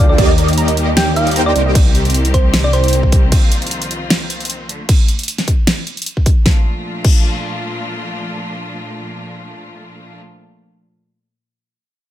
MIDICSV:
0, 0, Header, 1, 7, 480
1, 0, Start_track
1, 0, Key_signature, -2, "major"
1, 0, Tempo, 392157
1, 224, Time_signature, 4, 2, 24, 8
1, 14815, End_track
2, 0, Start_track
2, 0, Title_t, "Synth arpeggio sound"
2, 0, Program_c, 0, 84
2, 112, Note_on_c, 0, 69, 78
2, 190, Note_off_c, 0, 69, 0
2, 226, Note_on_c, 0, 67, 80
2, 260, Note_off_c, 0, 67, 0
2, 464, Note_on_c, 0, 70, 76
2, 500, Note_off_c, 0, 70, 0
2, 704, Note_on_c, 0, 82, 103
2, 763, Note_off_c, 0, 82, 0
2, 833, Note_on_c, 0, 75, 81
2, 884, Note_off_c, 0, 75, 0
2, 1072, Note_on_c, 0, 75, 81
2, 1150, Note_off_c, 0, 75, 0
2, 1184, Note_on_c, 0, 67, 84
2, 1219, Note_off_c, 0, 67, 0
2, 1426, Note_on_c, 0, 70, 83
2, 1460, Note_off_c, 0, 70, 0
2, 1664, Note_on_c, 0, 82, 101
2, 1723, Note_off_c, 0, 82, 0
2, 1792, Note_on_c, 0, 75, 81
2, 1844, Note_off_c, 0, 75, 0
2, 2032, Note_on_c, 0, 75, 84
2, 2110, Note_off_c, 0, 75, 0
2, 14815, End_track
3, 0, Start_track
3, 0, Title_t, "Synth pluck"
3, 0, Program_c, 1, 84
3, 114, Note_on_c, 1, 74, 76
3, 185, Note_off_c, 1, 74, 0
3, 1185, Note_on_c, 1, 79, 88
3, 1348, Note_off_c, 1, 79, 0
3, 1424, Note_on_c, 1, 77, 90
3, 1588, Note_off_c, 1, 77, 0
3, 1790, Note_on_c, 1, 74, 93
3, 1944, Note_off_c, 1, 74, 0
3, 2865, Note_on_c, 1, 72, 90
3, 3028, Note_off_c, 1, 72, 0
3, 3231, Note_on_c, 1, 74, 96
3, 3321, Note_off_c, 1, 74, 0
3, 3345, Note_on_c, 1, 72, 93
3, 4019, Note_off_c, 1, 72, 0
3, 14815, End_track
4, 0, Start_track
4, 0, Title_t, "Supersaw synth"
4, 0, Program_c, 2, 81
4, 0, Note_on_c, 2, 58, 78
4, 0, Note_on_c, 2, 62, 70
4, 0, Note_on_c, 2, 65, 73
4, 0, Note_on_c, 2, 69, 73
4, 0, Note_on_c, 2, 79, 86
4, 197, Note_off_c, 2, 58, 0
4, 197, Note_off_c, 2, 62, 0
4, 197, Note_off_c, 2, 65, 0
4, 197, Note_off_c, 2, 69, 0
4, 197, Note_off_c, 2, 79, 0
4, 224, Note_on_c, 2, 58, 86
4, 224, Note_on_c, 2, 63, 79
4, 224, Note_on_c, 2, 67, 80
4, 224, Note_on_c, 2, 74, 78
4, 224, Note_on_c, 2, 75, 100
4, 1637, Note_off_c, 2, 58, 0
4, 1637, Note_off_c, 2, 63, 0
4, 1637, Note_off_c, 2, 67, 0
4, 1637, Note_off_c, 2, 74, 0
4, 1637, Note_off_c, 2, 75, 0
4, 1664, Note_on_c, 2, 58, 83
4, 1664, Note_on_c, 2, 63, 71
4, 1664, Note_on_c, 2, 67, 71
4, 1664, Note_on_c, 2, 72, 73
4, 1664, Note_on_c, 2, 79, 87
4, 2117, Note_off_c, 2, 58, 0
4, 2117, Note_off_c, 2, 63, 0
4, 2117, Note_off_c, 2, 67, 0
4, 2117, Note_off_c, 2, 72, 0
4, 2117, Note_off_c, 2, 79, 0
4, 14815, End_track
5, 0, Start_track
5, 0, Title_t, "String section"
5, 0, Program_c, 3, 48
5, 0, Note_on_c, 3, 50, 80
5, 0, Note_on_c, 3, 53, 73
5, 0, Note_on_c, 3, 58, 77
5, 0, Note_on_c, 3, 65, 91
5, 0, Note_on_c, 3, 69, 75
5, 187, Note_off_c, 3, 53, 0
5, 187, Note_off_c, 3, 58, 0
5, 187, Note_off_c, 3, 65, 0
5, 202, Note_off_c, 3, 69, 0
5, 203, Note_off_c, 3, 50, 0
5, 225, Note_on_c, 3, 55, 73
5, 225, Note_on_c, 3, 58, 71
5, 226, Note_on_c, 3, 51, 85
5, 227, Note_on_c, 3, 67, 90
5, 1888, Note_off_c, 3, 55, 0
5, 1888, Note_off_c, 3, 58, 0
5, 1889, Note_off_c, 3, 67, 0
5, 1904, Note_on_c, 3, 55, 72
5, 1905, Note_on_c, 3, 58, 73
5, 1906, Note_on_c, 3, 60, 78
5, 1906, Note_on_c, 3, 67, 90
5, 4043, Note_off_c, 3, 55, 0
5, 4043, Note_off_c, 3, 67, 0
5, 4065, Note_on_c, 3, 65, 90
5, 4066, Note_on_c, 3, 36, 85
5, 4066, Note_on_c, 3, 53, 78
5, 5696, Note_off_c, 3, 51, 0
5, 5707, Note_off_c, 3, 60, 0
5, 5728, Note_off_c, 3, 36, 0
5, 5743, Note_on_c, 3, 50, 70
5, 5744, Note_on_c, 3, 57, 64
5, 5944, Note_off_c, 3, 58, 0
5, 5966, Note_off_c, 3, 53, 0
5, 5966, Note_off_c, 3, 65, 0
5, 5981, Note_off_c, 3, 50, 0
5, 5982, Note_off_c, 3, 57, 0
5, 7903, Note_on_c, 3, 62, 76
5, 7904, Note_on_c, 3, 46, 82
5, 7904, Note_on_c, 3, 53, 75
5, 7904, Note_on_c, 3, 57, 73
5, 7904, Note_on_c, 3, 65, 90
5, 12462, Note_off_c, 3, 62, 0
5, 12463, Note_off_c, 3, 46, 0
5, 12463, Note_off_c, 3, 53, 0
5, 12463, Note_off_c, 3, 57, 0
5, 12463, Note_off_c, 3, 65, 0
5, 14815, End_track
6, 0, Start_track
6, 0, Title_t, "Detuned saw bass"
6, 0, Program_c, 4, 39
6, 0, Note_on_c, 4, 38, 90
6, 201, Note_off_c, 4, 38, 0
6, 224, Note_on_c, 4, 39, 87
6, 1882, Note_off_c, 4, 39, 0
6, 1902, Note_on_c, 4, 36, 94
6, 4041, Note_off_c, 4, 36, 0
6, 14815, End_track
7, 0, Start_track
7, 0, Title_t, "Drums"
7, 224, Note_on_c, 9, 36, 120
7, 225, Note_on_c, 9, 42, 77
7, 225, Note_on_c, 9, 49, 49
7, 347, Note_off_c, 9, 36, 0
7, 347, Note_off_c, 9, 42, 0
7, 347, Note_off_c, 9, 49, 0
7, 465, Note_on_c, 9, 42, 65
7, 587, Note_off_c, 9, 42, 0
7, 592, Note_on_c, 9, 42, 46
7, 648, Note_off_c, 9, 42, 0
7, 648, Note_on_c, 9, 42, 62
7, 704, Note_off_c, 9, 42, 0
7, 704, Note_on_c, 9, 42, 83
7, 827, Note_off_c, 9, 42, 0
7, 832, Note_on_c, 9, 42, 62
7, 945, Note_off_c, 9, 42, 0
7, 945, Note_on_c, 9, 42, 66
7, 1067, Note_off_c, 9, 42, 0
7, 1184, Note_on_c, 9, 38, 112
7, 1184, Note_on_c, 9, 42, 74
7, 1184, Note_on_c, 9, 49, 39
7, 1307, Note_off_c, 9, 38, 0
7, 1307, Note_off_c, 9, 42, 0
7, 1307, Note_off_c, 9, 49, 0
7, 1424, Note_on_c, 9, 42, 61
7, 1547, Note_off_c, 9, 42, 0
7, 1552, Note_on_c, 9, 42, 48
7, 1608, Note_off_c, 9, 42, 0
7, 1608, Note_on_c, 9, 42, 65
7, 1665, Note_off_c, 9, 42, 0
7, 1665, Note_on_c, 9, 42, 75
7, 1787, Note_off_c, 9, 42, 0
7, 1905, Note_on_c, 9, 42, 65
7, 2027, Note_off_c, 9, 42, 0
7, 2144, Note_on_c, 9, 42, 83
7, 2144, Note_on_c, 9, 49, 50
7, 2145, Note_on_c, 9, 36, 123
7, 2267, Note_off_c, 9, 36, 0
7, 2267, Note_off_c, 9, 42, 0
7, 2267, Note_off_c, 9, 49, 0
7, 2384, Note_on_c, 9, 42, 69
7, 2507, Note_off_c, 9, 42, 0
7, 2512, Note_on_c, 9, 42, 48
7, 2568, Note_off_c, 9, 42, 0
7, 2568, Note_on_c, 9, 42, 62
7, 2624, Note_off_c, 9, 42, 0
7, 2624, Note_on_c, 9, 42, 87
7, 2747, Note_off_c, 9, 42, 0
7, 2752, Note_on_c, 9, 42, 62
7, 2864, Note_off_c, 9, 42, 0
7, 2864, Note_on_c, 9, 36, 62
7, 2864, Note_on_c, 9, 42, 66
7, 2987, Note_off_c, 9, 36, 0
7, 2987, Note_off_c, 9, 42, 0
7, 3104, Note_on_c, 9, 38, 118
7, 3104, Note_on_c, 9, 42, 75
7, 3104, Note_on_c, 9, 49, 41
7, 3226, Note_off_c, 9, 38, 0
7, 3226, Note_off_c, 9, 42, 0
7, 3226, Note_off_c, 9, 49, 0
7, 3344, Note_on_c, 9, 42, 67
7, 3467, Note_off_c, 9, 42, 0
7, 3472, Note_on_c, 9, 42, 52
7, 3528, Note_off_c, 9, 42, 0
7, 3528, Note_on_c, 9, 42, 67
7, 3584, Note_off_c, 9, 42, 0
7, 3584, Note_on_c, 9, 42, 79
7, 3707, Note_off_c, 9, 42, 0
7, 3712, Note_on_c, 9, 36, 57
7, 3823, Note_on_c, 9, 42, 67
7, 3825, Note_off_c, 9, 36, 0
7, 3825, Note_on_c, 9, 36, 104
7, 3945, Note_off_c, 9, 42, 0
7, 3947, Note_off_c, 9, 36, 0
7, 4063, Note_on_c, 9, 42, 85
7, 4063, Note_on_c, 9, 49, 53
7, 4065, Note_on_c, 9, 36, 114
7, 4186, Note_off_c, 9, 42, 0
7, 4186, Note_off_c, 9, 49, 0
7, 4187, Note_off_c, 9, 36, 0
7, 4303, Note_on_c, 9, 42, 70
7, 4426, Note_off_c, 9, 42, 0
7, 4430, Note_on_c, 9, 42, 51
7, 4487, Note_off_c, 9, 42, 0
7, 4487, Note_on_c, 9, 42, 66
7, 4544, Note_off_c, 9, 42, 0
7, 4544, Note_on_c, 9, 42, 85
7, 4666, Note_off_c, 9, 42, 0
7, 4671, Note_on_c, 9, 42, 67
7, 4783, Note_off_c, 9, 42, 0
7, 4783, Note_on_c, 9, 42, 69
7, 4906, Note_off_c, 9, 42, 0
7, 5023, Note_on_c, 9, 38, 114
7, 5023, Note_on_c, 9, 42, 77
7, 5023, Note_on_c, 9, 49, 43
7, 5146, Note_off_c, 9, 38, 0
7, 5146, Note_off_c, 9, 42, 0
7, 5146, Note_off_c, 9, 49, 0
7, 5263, Note_on_c, 9, 42, 69
7, 5386, Note_off_c, 9, 42, 0
7, 5391, Note_on_c, 9, 42, 53
7, 5448, Note_off_c, 9, 42, 0
7, 5448, Note_on_c, 9, 42, 72
7, 5504, Note_off_c, 9, 42, 0
7, 5504, Note_on_c, 9, 42, 80
7, 5626, Note_off_c, 9, 42, 0
7, 5745, Note_on_c, 9, 42, 71
7, 5867, Note_off_c, 9, 42, 0
7, 5983, Note_on_c, 9, 42, 86
7, 5983, Note_on_c, 9, 49, 50
7, 5984, Note_on_c, 9, 36, 124
7, 6106, Note_off_c, 9, 42, 0
7, 6106, Note_off_c, 9, 49, 0
7, 6107, Note_off_c, 9, 36, 0
7, 6223, Note_on_c, 9, 42, 73
7, 6346, Note_off_c, 9, 42, 0
7, 6351, Note_on_c, 9, 42, 52
7, 6407, Note_off_c, 9, 42, 0
7, 6407, Note_on_c, 9, 42, 66
7, 6463, Note_off_c, 9, 42, 0
7, 6463, Note_on_c, 9, 42, 92
7, 6586, Note_off_c, 9, 42, 0
7, 6591, Note_on_c, 9, 38, 38
7, 6591, Note_on_c, 9, 42, 65
7, 6704, Note_off_c, 9, 42, 0
7, 6704, Note_on_c, 9, 36, 64
7, 6704, Note_on_c, 9, 42, 70
7, 6713, Note_off_c, 9, 38, 0
7, 6826, Note_off_c, 9, 36, 0
7, 6826, Note_off_c, 9, 42, 0
7, 6943, Note_on_c, 9, 38, 117
7, 6943, Note_on_c, 9, 42, 81
7, 6943, Note_on_c, 9, 49, 38
7, 7066, Note_off_c, 9, 38, 0
7, 7066, Note_off_c, 9, 42, 0
7, 7066, Note_off_c, 9, 49, 0
7, 7183, Note_on_c, 9, 42, 70
7, 7306, Note_off_c, 9, 42, 0
7, 7310, Note_on_c, 9, 42, 51
7, 7366, Note_off_c, 9, 42, 0
7, 7366, Note_on_c, 9, 42, 69
7, 7422, Note_off_c, 9, 42, 0
7, 7422, Note_on_c, 9, 42, 84
7, 7545, Note_off_c, 9, 42, 0
7, 7551, Note_on_c, 9, 36, 57
7, 7662, Note_on_c, 9, 42, 70
7, 7664, Note_off_c, 9, 36, 0
7, 7664, Note_on_c, 9, 36, 103
7, 7785, Note_off_c, 9, 42, 0
7, 7787, Note_off_c, 9, 36, 0
7, 7903, Note_on_c, 9, 38, 86
7, 7904, Note_on_c, 9, 36, 118
7, 8025, Note_off_c, 9, 38, 0
7, 8027, Note_off_c, 9, 36, 0
7, 8623, Note_on_c, 9, 57, 83
7, 8624, Note_on_c, 9, 36, 118
7, 8746, Note_off_c, 9, 36, 0
7, 8746, Note_off_c, 9, 57, 0
7, 14815, End_track
0, 0, End_of_file